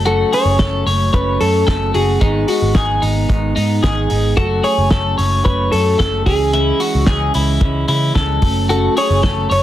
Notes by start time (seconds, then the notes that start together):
Already playing: F#1
0.06 F#2 C#3 F#3 A3 C#4 F#4 A4, closed hi-hat
0.32 F#3 A3 C#4 G#4 C#5, open hi-hat
0.45 F#1
0.59 F#2 C#3 F#3 A3 C#4 A4, kick, snare, closed hi-hat
0.86 F#1 F#3 A3 C#4 C#5, open hi-hat
1.13 F#1 C#3 F#3 A3 C#4 B4 C#5, kick, closed hi-hat
1.40 F#2 F#3 A3 C#4 A4, open hi-hat
1.67 F#1 F#2 C#3 F#3 A3 C#4 A4, kick, snare, closed hi-hat
1.94 F#1 F#3 A3 C#4 F#4 G#4, open hi-hat
2.20 G#1 G#2 D#3 G#3 B3 D#4, kick, closed hi-hat
2.47 G#3 B3 D#4 F#4, open hi-hat
2.62 G#1
2.75 G#2 D#3 G#3 B3 D#4 G#4, kick, snare, closed hi-hat
3.02 G#1 G#3 B3 D#4, open hi-hat
3.29 G#1 D#3 G#3 B3 D#4, kick, closed hi-hat
3.56 G#2 G#3 B3 D#4, open hi-hat
3.83 G#1 G#2 D#3 G#3 B3 D#4 G#4, kick, snare, closed hi-hat
4.10 G#1 G#3 B3 D#4, open hi-hat
4.37 F#1 F#2 C#3 F#3 A3 C#4 F#4 A4, kick, closed hi-hat
4.63 F#3 A3 C#4 G#4 C#5, open hi-hat
4.78 F#1
4.90 F#2 C#3 F#3 A3 C#4 A4, kick, snare, closed hi-hat
5.17 F#1 F#3 A3 C#4 C#5, open hi-hat
5.45 F#1 C#3 F#3 A3 C#4 B4 C#5, kick, closed hi-hat
5.71 F#2 F#3 A3 C#4 A4, open hi-hat
5.98 F#1 F#2 C#3 F#3 A3 C#4 A4, kick, snare, closed hi-hat
6.25 C#2 E3 G#3 C#4 G#4, kick, open hi-hat
6.53 C#3 E3 G#3 C#4 E4, closed hi-hat
6.80 E3 G#3 C#4 F#4, open hi-hat
6.95 C#2
7.06 C#2 C#3 E3 G#3 C#4 G#4, kick, snare, closed hi-hat
7.33 C#2 E3 G#3 C#4 E4, open hi-hat
7.60 C#2 C#3 E3 G#3 C#4, kick, closed hi-hat
7.88 C#3 E3 G#3 C#4 E4, open hi-hat
8.14 C#2 C#3 E3 G#3 C#4 A4, kick, snare, closed hi-hat
8.42 F#1 F#3 A3 C#4, kick, open hi-hat
8.69 F#2 C#3 F#3 A3 C#4 F#4 A4, closed hi-hat
8.96 F#3 A3 C#4 G#4 C#5, open hi-hat
9.10 F#1
9.23 F#2 C#3 F#3 A3 C#4 A4, kick, snare, closed hi-hat
9.50 F#1 F#3 A3 C#4 C#5, open hi-hat